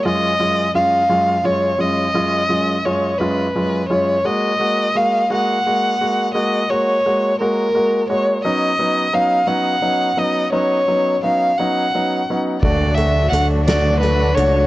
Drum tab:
CC |------|------|------|------|
HH |------|------|------|------|
SD |------|------|------|------|
BD |------|------|------|------|

CC |------|------|x-----|
HH |------|------|-xxxxx|
SD |------|------|---o--|
BD |------|------|o-----|